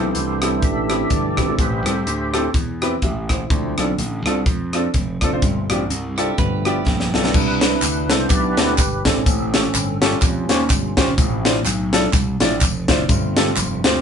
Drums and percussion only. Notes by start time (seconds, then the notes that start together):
0.15 closed hi-hat
0.42 cross-stick, closed hi-hat
0.62 kick, closed hi-hat
0.89 cross-stick, closed hi-hat
1.10 kick, closed hi-hat
1.37 kick, cross-stick, closed hi-hat
1.59 kick, closed hi-hat
1.86 cross-stick, closed hi-hat
2.07 closed hi-hat
2.34 cross-stick, closed hi-hat
2.54 kick, closed hi-hat
2.82 cross-stick, closed hi-hat
3.02 kick, closed hi-hat
3.29 kick, cross-stick, closed hi-hat
3.50 kick, closed hi-hat
3.78 cross-stick, closed hi-hat
3.98 closed hi-hat
4.26 cross-stick, closed hi-hat
4.46 kick, closed hi-hat
4.73 cross-stick, closed hi-hat
4.94 kick, closed hi-hat
5.21 kick, cross-stick, closed hi-hat
5.42 kick, closed hi-hat
5.70 cross-stick, closed hi-hat
5.90 closed hi-hat
6.18 cross-stick, closed hi-hat
6.38 kick, closed hi-hat
6.65 cross-stick, closed hi-hat
6.87 kick, snare
7.00 snare
7.14 snare
7.24 snare
7.34 kick, crash, tambourine
7.61 snare, closed hi-hat, tambourine
7.82 clap, closed hi-hat, tambourine
8.10 snare, closed hi-hat, tambourine
8.30 kick, clap, closed hi-hat, tambourine
8.57 snare, closed hi-hat, tambourine
8.78 kick, clap, closed hi-hat, tambourine
9.05 kick, snare, closed hi-hat, tambourine
9.26 kick, closed hi-hat, tambourine
9.54 snare, closed hi-hat, tambourine
9.75 clap, closed hi-hat, tambourine
10.02 snare, closed hi-hat, tambourine
10.22 kick, clap, closed hi-hat, tambourine
10.49 snare, closed hi-hat, tambourine
10.69 kick, clap, closed hi-hat, tambourine
10.97 kick, snare, closed hi-hat, tambourine
11.18 kick, closed hi-hat, tambourine
11.45 snare, closed hi-hat, tambourine
11.66 clap, closed hi-hat, tambourine
11.93 snare, closed hi-hat, tambourine
12.13 kick, clap, closed hi-hat, tambourine
12.40 snare, closed hi-hat, tambourine
12.61 kick, clap, closed hi-hat, tambourine
12.88 kick, snare, closed hi-hat, tambourine
13.09 kick, closed hi-hat, tambourine
13.36 snare, closed hi-hat, tambourine
13.57 clap, closed hi-hat, tambourine
13.84 snare, closed hi-hat, tambourine